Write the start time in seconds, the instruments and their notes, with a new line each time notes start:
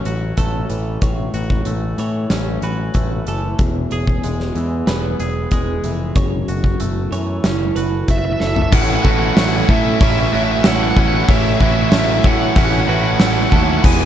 Already playing: clean electric guitar E3 A3 C#4 A4 C#5, ambient pad A3 F#4 C#5
0.05 picked electric bass A1, clean electric guitar F#4, closed hi-hat
0.37 picked electric bass A1, clean electric guitar A3 A4, kick, closed hi-hat
0.69 picked electric bass A1, clean electric guitar E3, closed hi-hat
1.02 picked electric bass A1, clean electric guitar A2 C#5, ambient pad G#5, kick, closed hi-hat
1.34 picked electric bass A1, clean electric guitar F#4, closed hi-hat
1.50 kick
1.65 picked electric bass A1, clean electric guitar A3, closed hi-hat
1.98 picked electric bass A2, clean electric guitar E3 C#5, closed hi-hat
2.30 picked electric bass A1, clean electric guitar C#4, snare, closed hi-hat
2.62 picked electric bass A1, clean electric guitar F#4 B4, closed hi-hat
2.94 picked electric bass A1, clean electric guitar A3, kick, closed hi-hat
3.26 picked electric bass F#1, clean electric guitar E3 A4, closed hi-hat
3.59 picked electric bass E1, clean electric guitar E2, ambient pad E3 B3 G#4, kick, closed hi-hat
3.91 picked electric bass E1, clean electric guitar G#4, closed hi-hat
4.07 kick
4.23 picked electric bass E1, clean electric guitar G#3, closed hi-hat
4.40 snare
4.55 picked electric bass E2, clean electric guitar E3, closed hi-hat
4.87 picked electric bass E1, clean electric guitar B3 B4, snare, closed hi-hat
5.20 picked electric bass E1, clean electric guitar G#4, closed hi-hat
5.51 picked electric bass E1, clean electric guitar G#3 G#4, kick, closed hi-hat
5.84 picked electric bass F1, clean electric guitar E3, closed hi-hat
6.16 picked electric bass F#1, clean electric guitar F#2 C#5, ambient pad F#3 E4 A4, kick, closed hi-hat
6.48 picked electric bass F#1, clean electric guitar F#4, closed hi-hat
6.64 kick
6.80 picked electric bass F#1, clean electric guitar A3, closed hi-hat
7.12 picked electric bass F#2, clean electric guitar E3 C#5, closed hi-hat
7.44 picked electric bass F#1, clean electric guitar C#4, snare, closed hi-hat
7.76 picked electric bass F#1, clean electric guitar F#4 B4, closed hi-hat
8.08 picked electric bass F#1, clean electric guitar A3, lead electric guitar E5, kick, closed hi-hat
8.18 lead electric guitar E5
8.25 lead electric guitar E5
8.33 lead electric guitar E5
8.40 picked electric bass F#1, clean electric guitar E3 A4, lead electric guitar E5, snare
8.47 lead electric guitar E5
8.55 lead electric guitar E5, floor tom
8.62 lead electric guitar E5
8.71 picked electric bass A1, overdriven electric guitar A2 E3 A3 C#4 E4, clean electric guitar A2, ambient pad A3 F#4 C#5, lead electric guitar F#5, kick, crash
8.82 lead electric guitar F#5
8.90 lead electric guitar F#5
8.96 lead electric guitar F#5
9.03 picked electric bass A1, overdriven electric guitar A2 E3 A3 C#4 E4, clean electric guitar F#4 A4, lead electric guitar F#5, kick
9.11 lead electric guitar F#5
9.19 lead electric guitar F#5
9.26 lead electric guitar F#5
9.33 picked electric bass A1, overdriven electric guitar A2 E3 A3 C#4 E4, lead electric guitar F#5, snare, open hi-hat
9.38 clean electric guitar A3, lead electric guitar F#5
9.49 lead electric guitar F#5
9.56 lead electric guitar F#5
9.65 overdriven electric guitar A2 E3, picked electric bass A2, lead electric guitar F#5, kick
9.69 clean electric guitar E3, overdriven electric guitar A3 C#4 E4, lead electric guitar E5
10.00 picked electric bass A1, overdriven electric guitar A2 E3 A3 C#4 E4, clean electric guitar C#4 C#5, lead electric guitar E5, kick, open hi-hat
10.11 lead electric guitar E5
10.20 lead electric guitar E5
10.28 overdriven electric guitar A2, lead electric guitar E5
10.32 picked electric bass A1, overdriven electric guitar E3 A3 C#4 E4, clean electric guitar F#4, lead electric guitar E5
10.44 lead electric guitar E5
10.51 lead electric guitar E5
10.59 lead electric guitar E5
10.64 picked electric bass A1, overdriven electric guitar A2 E3 A3 C#4 E4, clean electric guitar A3 A4, lead electric guitar F#5, snare, open hi-hat
10.76 lead electric guitar F#5
10.84 lead electric guitar F#5
10.91 lead electric guitar F#5
10.96 picked electric bass A1, overdriven electric guitar A2 E3 A3 C#4 E4, clean electric guitar E3, lead electric guitar F#5, kick
11.08 lead electric guitar F#5
11.15 lead electric guitar F#5
11.24 overdriven electric guitar A2 E3, lead electric guitar F#5
11.28 picked electric bass A1, clean electric guitar A2 C#5, overdriven electric guitar A3 C#4 E4, lead electric guitar E5, kick, open hi-hat
11.38 lead electric guitar E5
11.45 lead electric guitar E5
11.53 lead electric guitar E5
11.60 picked electric bass A1, overdriven electric guitar A2 E3 A3 C#4 E4, clean electric guitar F#4, lead electric guitar E5, kick
11.68 lead electric guitar E5
11.76 lead electric guitar E5
11.82 lead electric guitar E5
11.90 picked electric bass A1, overdriven electric guitar A2 E3 A3 C#4 E4, clean electric guitar A3, lead electric guitar E5, snare, open hi-hat
11.99 lead electric guitar E5
12.06 lead electric guitar E5
12.13 lead electric guitar E5
12.21 picked electric bass A2, overdriven electric guitar A2 E3 A3, lead electric guitar E5, kick
12.25 overdriven electric guitar C#4 E4, clean electric guitar C#5, lead electric guitar F#5
12.56 picked electric bass A1, overdriven electric guitar A2 E3 A3 C#4 E4, clean electric guitar C#4, lead electric guitar F#5, kick, open hi-hat
12.65 lead electric guitar F#5
12.73 lead electric guitar F#5
12.80 lead electric guitar F#5
12.87 picked electric bass A1, overdriven electric guitar A2 E3 A3 C#4 E4, clean electric guitar F#4 B4, lead electric guitar F#5
12.95 lead electric guitar F#5
13.04 lead electric guitar F#5
13.11 lead electric guitar F#5
13.19 picked electric bass A1, overdriven electric guitar A2 E3 A3 C#4 E4, clean electric guitar A3, lead electric guitar F#5, snare, open hi-hat
13.27 lead electric guitar F#5
13.33 lead electric guitar F#5
13.42 lead electric guitar F#5
13.50 picked electric bass D#2, overdriven electric guitar A2 E3 A3 C#4 E4, clean electric guitar A4, lead electric guitar F#5, kick
13.57 lead electric guitar F#5
13.63 lead electric guitar F#5
13.71 lead electric guitar F#5
13.78 lead electric guitar F#5
13.83 picked electric bass E1, clean electric guitar E2, overdriven electric guitar E3 G#3 B3 E4, ambient pad E3 B3 G#4, lead electric guitar G#5, kick, crash
13.93 lead electric guitar G#5
14.01 lead electric guitar G#5